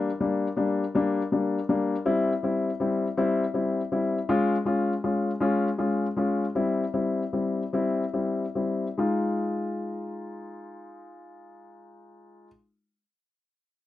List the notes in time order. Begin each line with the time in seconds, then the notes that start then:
0.20 G3 A#3 D4
0.57 G3 A#3 D4
0.95 G3 A#3 D4
1.32 G3 A#3 D4
1.69 G3 A#3 D4
2.06 G3 C4 E4
2.43 G3 C4 E4
2.80 G3 C4 E4
3.17 G3 C4 E4
3.54 G3 C4 E4
3.92 G3 C4 E4
4.29 G#3 C#4 F4
4.65 G#3 C#4 F4
5.04 G#3 C#4 F4
5.40 G#3 C#4 F4
5.78 G#3 C#4 F4
6.16 G#3 C#4 F4
6.55 G3 C4 E4
6.94 G3 C4 E4
7.33 G3 C4 E4
7.73 G3 C4 E4
8.13 G3 C4 E4
8.55 G3 C4 E4
8.98 G#3 D#4 F4